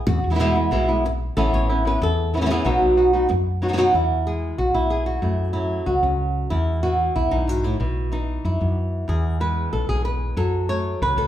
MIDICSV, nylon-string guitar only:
0, 0, Header, 1, 3, 480
1, 0, Start_track
1, 0, Key_signature, 4, "major"
1, 0, Tempo, 321716
1, 113, Time_signature, 4, 2, 24, 8
1, 16819, End_track
2, 0, Start_track
2, 0, Title_t, "Nylon-string guitar"
2, 0, Program_c, 0, 24
2, 124, Note_on_c, 0, 66, 79
2, 450, Note_on_c, 0, 52, 46
2, 461, Note_on_c, 0, 56, 50
2, 464, Note_off_c, 0, 66, 0
2, 470, Note_on_c, 0, 64, 47
2, 471, Note_on_c, 0, 59, 51
2, 498, Note_off_c, 0, 52, 0
2, 505, Note_off_c, 0, 56, 0
2, 516, Note_on_c, 0, 52, 64
2, 517, Note_off_c, 0, 59, 0
2, 518, Note_off_c, 0, 64, 0
2, 523, Note_on_c, 0, 56, 61
2, 535, Note_on_c, 0, 59, 67
2, 536, Note_on_c, 0, 64, 68
2, 576, Note_off_c, 0, 52, 0
2, 581, Note_off_c, 0, 56, 0
2, 587, Note_off_c, 0, 64, 0
2, 587, Note_on_c, 0, 47, 77
2, 588, Note_off_c, 0, 59, 0
2, 594, Note_on_c, 0, 52, 82
2, 599, Note_on_c, 0, 56, 85
2, 605, Note_on_c, 0, 64, 87
2, 606, Note_on_c, 0, 59, 86
2, 807, Note_off_c, 0, 64, 0
2, 820, Note_off_c, 0, 47, 0
2, 821, Note_off_c, 0, 59, 0
2, 824, Note_off_c, 0, 52, 0
2, 825, Note_on_c, 0, 64, 54
2, 826, Note_off_c, 0, 56, 0
2, 839, Note_on_c, 0, 59, 47
2, 845, Note_on_c, 0, 56, 41
2, 1054, Note_off_c, 0, 56, 0
2, 1059, Note_off_c, 0, 59, 0
2, 1059, Note_off_c, 0, 64, 0
2, 1061, Note_on_c, 0, 47, 76
2, 1072, Note_on_c, 0, 52, 81
2, 1072, Note_on_c, 0, 56, 74
2, 1077, Note_on_c, 0, 59, 80
2, 1084, Note_on_c, 0, 64, 81
2, 1297, Note_off_c, 0, 47, 0
2, 1301, Note_off_c, 0, 64, 0
2, 1303, Note_off_c, 0, 52, 0
2, 1303, Note_off_c, 0, 56, 0
2, 1305, Note_off_c, 0, 59, 0
2, 1319, Note_on_c, 0, 64, 53
2, 1332, Note_on_c, 0, 59, 51
2, 1342, Note_on_c, 0, 56, 42
2, 1547, Note_off_c, 0, 64, 0
2, 1553, Note_off_c, 0, 59, 0
2, 1558, Note_off_c, 0, 56, 0
2, 2040, Note_on_c, 0, 52, 74
2, 2040, Note_on_c, 0, 69, 90
2, 2048, Note_on_c, 0, 59, 79
2, 2053, Note_on_c, 0, 61, 86
2, 2060, Note_on_c, 0, 64, 83
2, 2283, Note_off_c, 0, 69, 0
2, 2297, Note_on_c, 0, 73, 90
2, 2507, Note_off_c, 0, 52, 0
2, 2510, Note_off_c, 0, 64, 0
2, 2511, Note_off_c, 0, 59, 0
2, 2513, Note_off_c, 0, 61, 0
2, 2522, Note_off_c, 0, 73, 0
2, 2528, Note_on_c, 0, 64, 51
2, 2541, Note_on_c, 0, 61, 47
2, 2553, Note_on_c, 0, 59, 38
2, 2743, Note_off_c, 0, 64, 0
2, 2757, Note_off_c, 0, 61, 0
2, 2761, Note_on_c, 0, 64, 47
2, 2763, Note_off_c, 0, 59, 0
2, 2777, Note_on_c, 0, 61, 44
2, 2784, Note_on_c, 0, 59, 44
2, 2794, Note_on_c, 0, 71, 77
2, 2987, Note_off_c, 0, 64, 0
2, 2990, Note_off_c, 0, 59, 0
2, 2995, Note_off_c, 0, 61, 0
2, 2998, Note_off_c, 0, 71, 0
2, 3033, Note_on_c, 0, 69, 81
2, 3460, Note_off_c, 0, 69, 0
2, 3487, Note_on_c, 0, 52, 57
2, 3489, Note_on_c, 0, 59, 57
2, 3497, Note_on_c, 0, 61, 60
2, 3506, Note_on_c, 0, 64, 65
2, 3517, Note_off_c, 0, 52, 0
2, 3519, Note_off_c, 0, 59, 0
2, 3527, Note_off_c, 0, 61, 0
2, 3533, Note_on_c, 0, 52, 49
2, 3536, Note_off_c, 0, 64, 0
2, 3543, Note_on_c, 0, 61, 54
2, 3582, Note_off_c, 0, 52, 0
2, 3593, Note_off_c, 0, 61, 0
2, 3600, Note_on_c, 0, 52, 58
2, 3606, Note_on_c, 0, 59, 62
2, 3611, Note_on_c, 0, 61, 68
2, 3617, Note_on_c, 0, 64, 65
2, 3648, Note_off_c, 0, 52, 0
2, 3655, Note_off_c, 0, 59, 0
2, 3655, Note_off_c, 0, 61, 0
2, 3666, Note_on_c, 0, 52, 66
2, 3669, Note_off_c, 0, 64, 0
2, 3673, Note_on_c, 0, 59, 71
2, 3673, Note_on_c, 0, 61, 76
2, 3687, Note_on_c, 0, 64, 81
2, 3718, Note_off_c, 0, 52, 0
2, 3725, Note_off_c, 0, 59, 0
2, 3728, Note_off_c, 0, 61, 0
2, 3736, Note_off_c, 0, 64, 0
2, 3736, Note_on_c, 0, 52, 78
2, 3743, Note_on_c, 0, 59, 83
2, 3743, Note_on_c, 0, 68, 79
2, 3746, Note_on_c, 0, 61, 82
2, 3754, Note_on_c, 0, 64, 77
2, 3943, Note_off_c, 0, 59, 0
2, 3949, Note_on_c, 0, 47, 74
2, 3951, Note_off_c, 0, 52, 0
2, 3957, Note_on_c, 0, 54, 78
2, 3959, Note_off_c, 0, 61, 0
2, 3961, Note_on_c, 0, 59, 80
2, 3963, Note_off_c, 0, 64, 0
2, 3965, Note_off_c, 0, 68, 0
2, 3968, Note_on_c, 0, 63, 83
2, 3971, Note_on_c, 0, 66, 84
2, 4416, Note_off_c, 0, 66, 0
2, 4421, Note_off_c, 0, 47, 0
2, 4425, Note_off_c, 0, 54, 0
2, 4427, Note_off_c, 0, 59, 0
2, 4430, Note_off_c, 0, 63, 0
2, 4434, Note_on_c, 0, 66, 47
2, 4446, Note_on_c, 0, 63, 42
2, 4452, Note_on_c, 0, 59, 35
2, 4655, Note_off_c, 0, 66, 0
2, 4670, Note_off_c, 0, 63, 0
2, 4672, Note_off_c, 0, 59, 0
2, 4673, Note_on_c, 0, 66, 51
2, 4687, Note_on_c, 0, 63, 46
2, 4695, Note_on_c, 0, 59, 40
2, 4894, Note_off_c, 0, 59, 0
2, 4900, Note_off_c, 0, 63, 0
2, 4903, Note_off_c, 0, 66, 0
2, 5398, Note_on_c, 0, 54, 57
2, 5400, Note_on_c, 0, 59, 52
2, 5407, Note_on_c, 0, 63, 52
2, 5419, Note_on_c, 0, 66, 65
2, 5479, Note_off_c, 0, 54, 0
2, 5487, Note_off_c, 0, 59, 0
2, 5491, Note_off_c, 0, 63, 0
2, 5494, Note_off_c, 0, 66, 0
2, 5497, Note_on_c, 0, 54, 47
2, 5504, Note_on_c, 0, 59, 51
2, 5509, Note_on_c, 0, 63, 52
2, 5512, Note_on_c, 0, 66, 55
2, 5551, Note_off_c, 0, 54, 0
2, 5553, Note_off_c, 0, 59, 0
2, 5560, Note_off_c, 0, 63, 0
2, 5562, Note_off_c, 0, 66, 0
2, 5569, Note_on_c, 0, 54, 61
2, 5571, Note_on_c, 0, 59, 63
2, 5578, Note_on_c, 0, 63, 61
2, 5579, Note_on_c, 0, 66, 67
2, 5617, Note_off_c, 0, 54, 0
2, 5618, Note_off_c, 0, 59, 0
2, 5626, Note_off_c, 0, 66, 0
2, 5626, Note_on_c, 0, 47, 67
2, 5631, Note_off_c, 0, 63, 0
2, 5635, Note_on_c, 0, 54, 73
2, 5636, Note_on_c, 0, 59, 77
2, 5644, Note_on_c, 0, 66, 86
2, 5648, Note_on_c, 0, 63, 81
2, 5859, Note_off_c, 0, 47, 0
2, 5864, Note_off_c, 0, 54, 0
2, 5865, Note_off_c, 0, 59, 0
2, 5868, Note_off_c, 0, 66, 0
2, 5871, Note_off_c, 0, 63, 0
2, 5877, Note_on_c, 0, 40, 59
2, 5894, Note_on_c, 0, 64, 71
2, 6363, Note_on_c, 0, 56, 46
2, 6367, Note_on_c, 0, 68, 87
2, 6833, Note_off_c, 0, 68, 0
2, 6839, Note_on_c, 0, 66, 76
2, 6844, Note_off_c, 0, 64, 0
2, 7079, Note_on_c, 0, 64, 71
2, 7311, Note_off_c, 0, 66, 0
2, 7317, Note_on_c, 0, 68, 78
2, 7545, Note_off_c, 0, 68, 0
2, 7551, Note_on_c, 0, 66, 78
2, 7771, Note_off_c, 0, 56, 0
2, 7782, Note_off_c, 0, 40, 0
2, 7787, Note_on_c, 0, 42, 56
2, 7792, Note_off_c, 0, 64, 0
2, 7800, Note_on_c, 0, 57, 42
2, 7810, Note_on_c, 0, 64, 39
2, 8246, Note_off_c, 0, 64, 0
2, 8252, Note_on_c, 0, 64, 67
2, 8277, Note_on_c, 0, 54, 51
2, 8513, Note_off_c, 0, 66, 0
2, 8742, Note_off_c, 0, 64, 0
2, 8748, Note_on_c, 0, 66, 67
2, 9002, Note_on_c, 0, 61, 38
2, 9682, Note_off_c, 0, 42, 0
2, 9687, Note_off_c, 0, 54, 0
2, 9689, Note_off_c, 0, 57, 0
2, 9689, Note_off_c, 0, 61, 0
2, 9697, Note_off_c, 0, 66, 0
2, 9703, Note_on_c, 0, 64, 86
2, 9723, Note_on_c, 0, 40, 62
2, 10182, Note_off_c, 0, 64, 0
2, 10188, Note_on_c, 0, 66, 89
2, 10200, Note_on_c, 0, 52, 47
2, 10671, Note_off_c, 0, 66, 0
2, 10677, Note_on_c, 0, 64, 78
2, 10911, Note_on_c, 0, 63, 76
2, 11147, Note_off_c, 0, 40, 0
2, 11153, Note_on_c, 0, 44, 54
2, 11176, Note_off_c, 0, 64, 0
2, 11176, Note_on_c, 0, 66, 77
2, 11391, Note_on_c, 0, 45, 50
2, 11394, Note_off_c, 0, 44, 0
2, 11400, Note_off_c, 0, 66, 0
2, 11400, Note_on_c, 0, 64, 82
2, 11630, Note_off_c, 0, 45, 0
2, 11633, Note_off_c, 0, 63, 0
2, 11636, Note_on_c, 0, 47, 62
2, 12104, Note_off_c, 0, 52, 0
2, 12110, Note_on_c, 0, 52, 52
2, 12115, Note_off_c, 0, 47, 0
2, 12122, Note_on_c, 0, 63, 73
2, 12357, Note_off_c, 0, 64, 0
2, 12611, Note_on_c, 0, 64, 64
2, 12840, Note_on_c, 0, 59, 39
2, 13078, Note_off_c, 0, 63, 0
2, 13528, Note_off_c, 0, 59, 0
2, 13544, Note_on_c, 0, 40, 58
2, 13555, Note_off_c, 0, 64, 0
2, 13560, Note_on_c, 0, 68, 75
2, 14023, Note_off_c, 0, 52, 0
2, 14029, Note_on_c, 0, 56, 50
2, 14032, Note_off_c, 0, 68, 0
2, 14038, Note_on_c, 0, 71, 75
2, 14506, Note_off_c, 0, 71, 0
2, 14512, Note_on_c, 0, 69, 76
2, 14748, Note_off_c, 0, 69, 0
2, 14754, Note_on_c, 0, 68, 77
2, 14987, Note_off_c, 0, 68, 0
2, 14993, Note_on_c, 0, 71, 80
2, 15442, Note_off_c, 0, 56, 0
2, 15468, Note_off_c, 0, 40, 0
2, 15469, Note_on_c, 0, 54, 62
2, 15473, Note_off_c, 0, 71, 0
2, 15475, Note_on_c, 0, 69, 88
2, 15952, Note_on_c, 0, 73, 89
2, 15959, Note_on_c, 0, 57, 49
2, 16432, Note_off_c, 0, 73, 0
2, 16434, Note_off_c, 0, 69, 0
2, 16449, Note_on_c, 0, 71, 85
2, 16678, Note_on_c, 0, 69, 82
2, 16819, Note_off_c, 0, 54, 0
2, 16819, Note_off_c, 0, 57, 0
2, 16819, Note_off_c, 0, 69, 0
2, 16819, Note_off_c, 0, 71, 0
2, 16819, End_track
3, 0, Start_track
3, 0, Title_t, "Muted nylon-string guitar strokes"
3, 100, Note_on_c, 9, 29, 73
3, 249, Note_off_c, 9, 29, 0
3, 1573, Note_on_c, 9, 29, 68
3, 1722, Note_off_c, 9, 29, 0
3, 3008, Note_on_c, 9, 29, 59
3, 3157, Note_off_c, 9, 29, 0
3, 4902, Note_on_c, 9, 29, 58
3, 5052, Note_off_c, 9, 29, 0
3, 16819, End_track
0, 0, End_of_file